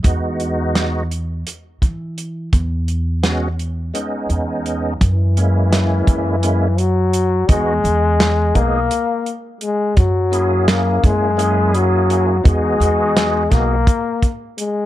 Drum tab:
HH |xxxxxxx|xxxxxxx|xxxxxxx|xxxxxxx|
SD |--o----|--o----|--o----|--o----|
BD |o----o-|o------|o--o---|o--o---|

HH |xxxxxxx|xxxxxxx|
SD |--o----|--oo---|
BD |o--o---|o--ooo-|